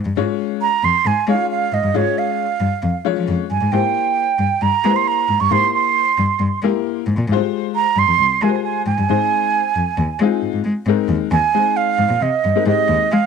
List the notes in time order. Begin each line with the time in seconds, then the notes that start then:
0.05 G2
0.17 G#2 G#3 C#4 F4 C#5
0.62 A#5
0.83 F2 C6
1.05 G#2 G#5
1.27 G#3 C#4 D#4 C#5 F5
1.34 F4
1.51 F5
1.72 G#2 D#5
1.83 G2
1.94 G#2 G#3 C#4 F4 G#4 C#5
2.18 F5
2.60 G2
2.83 F2
3.05 F3 G#3 C#4 F4 C#5
3.17 F3
3.28 F2
3.51 G2 G#5
3.61 G#2
3.72 G#2 A#3 E4 G4 C5 G5
4.39 G2
4.61 G2 A#5
4.84 G#3 A#3 E4 G4 B4
4.90 C5
4.96 C6
5.08 A#5
5.29 G#2
5.40 G2 C#6
5.50 G#2 A#3 D#4 G4 C5 C6
5.57 E4
5.75 C6
6.18 G2
6.40 G2
6.62 G#3 A#3 E4 G4 A#4
7.07 G#2
7.17 A#2
7.28 G#2 G3 F4
7.32 G4 C5
7.37 G#3
7.76 A#5
7.96 G2 C6
8.07 F2
8.18 C2
8.41 G#3 F4 G4 A#4 G#5
8.49 C5
8.64 G#5
8.86 G#2 G#5
8.98 G2
9.09 G#2 G#3 C4 D#4 C5
9.76 F2
9.98 D#2
10.19 G#3 C4 D#4 F4
10.42 G#2
10.53 G#2
10.64 G#3
10.86 G#2 G#3 C4 D#4 A#4
11.09 D#2
11.31 D#2 G#5
11.54 G#3 C4 D#4 C5
11.77 F5
11.98 G#2
12.09 A#2
12.21 C3 D#5
12.45 G2
12.56 G#3 C4 D#4 A#4
12.66 G#2 G#3 C4 D#4 G4 D#5
12.89 D#2
13.12 G#3 F5